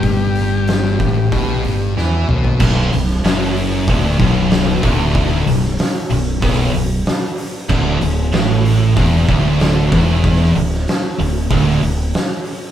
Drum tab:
CC |----------------|x---------------|----------------|x---------------|
HH |o-o-o-o-o-o-----|--o-o-o-o-o-o-o-|o-o-o-o-o-o-o-o-|--o-o-o-o-o-o-o-|
SD |----oo------o---|---oo-------o---|---oo-------o---|----o-------o---|
T2 |--------------o-|----------------|----------------|----------------|
FT |---------------o|----------------|----------------|----------------|
BD |o-----o-o-------|o-------o-o---o-|o-------o-------|o-------o-o---o-|

CC |----------------|
HH |o-o-o-o-o-o-o-o-|
SD |---oo-------o---|
T2 |----------------|
FT |----------------|
BD |o-------o-------|